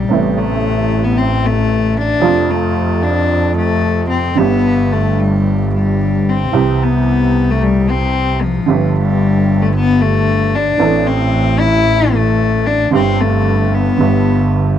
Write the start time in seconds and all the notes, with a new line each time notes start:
Already playing: G3
0.09 A1 A2 C3 A3 B3
0.13 E4
0.37 A3
1.04 B3
1.18 C4
1.45 A3
1.97 D4
2.20 F2 C3 F3 A3 F4
2.50 A3
3.03 D4
3.57 A3
4.10 C4
4.35 G1 G2 D3 G3 B3
4.39 G4
4.92 A3
5.19 G3
5.75 G3
6.29 C4
6.51 C2 C3 E3 G3 E4 G4
6.83 B3
7.50 A3
7.63 G3
7.90 C4
8.43 F3
8.66 G1 G2 D3 G3 B3 G4
8.96 G3
9.62 A3
9.76 B3
10.02 A3
10.55 D4
10.78 A1 A2 E3 A3 C4
10.82 A4
11.07 C4
11.60 E4
12.14 A3
12.66 D4
12.91 G1 G2 D3 G3 C4 G4
13.21 A3
13.75 B3
13.98 G1 G2 D3 G3 B3 G4